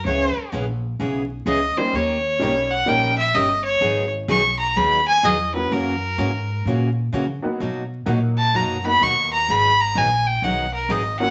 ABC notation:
X:1
M:4/4
L:1/8
Q:"Swing" 1/4=127
K:G#m
V:1 name="Fiddle"
c2 z4 d =c | c3 f =g e d c- | c z c' a b g d B | A4 z4 |
z3 =a ^a b c' a | b a g =g f A d f |]
V:2 name="Honky-tonk piano"
z6 z [=G,A,CD=G] | z2 [=G,A,CD=G] z [G,A,CDA] z3 | z6 z [F,A,CEF] | z6 z [F,A,B,DF] |
z2 [F,A,DF]3 [F,A,B,DF]3 | z6 z [F,A,CEF] |]
V:3 name="Steel-string acoustic guitar"
[C,E,B,CG] z [C,E,B,CG] z [C,E,B,CG] z [C,E,B,CG] z | [D,A,C=GA] z [D,A,CGA] z [D,A,CGA] z [D,A,CGA] z | [D,F,B,DG] z [D,F,B,DG] z [D,F,B,DG] z [D,F,B,DG] z | [C,E,A,CF] z [C,E,A,CF] z [C,E,A,CF] z [C,E,A,CF] z |
[B,,F,A,DF] z [B,,F,A,DF] z [B,,F,A,DF] z [B,,F,A,DF] z | [D,F,B,DG] z [D,F,B,DG] z [D,F,B,DG] z [D,F,B,DG] z |]
V:4 name="Upright bass" clef=bass
C,, z A,,,2 B,,,2 C,, z | D,,2 B,,,2 A,,,2 =G,,,2 | G,,,2 B,,,2 D,,2 E,,2 | F,,2 G,,2 A,,2 C, z |
B,,2 A,,2 F,,2 D,,2 | G,,,2 A,,,2 B,,,2 G,,,2 |]